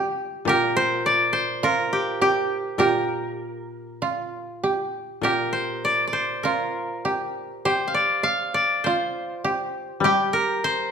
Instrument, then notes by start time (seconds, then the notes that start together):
koto
Already playing: G3 F4 G4
0.45 A#2 G4 A#4
0.77 C5
1.06 D5
1.33 C5
1.63 F4 A#4
1.93 G4
2.21 G4
2.78 A#2 G4 A#4
4.02 F4
4.63 G4
5.21 A#2 G4 A#4
5.53 C5
5.85 D5
6.07 D5
6.13 C5
6.43 F4 A#4
7.05 G4
7.65 G4 C5
7.88 F5
7.94 D5
8.23 F5
8.54 D5
8.84 F4 C5
9.44 G4
10.00 G3 G4
10.05 G4
10.33 A#4
10.64 C5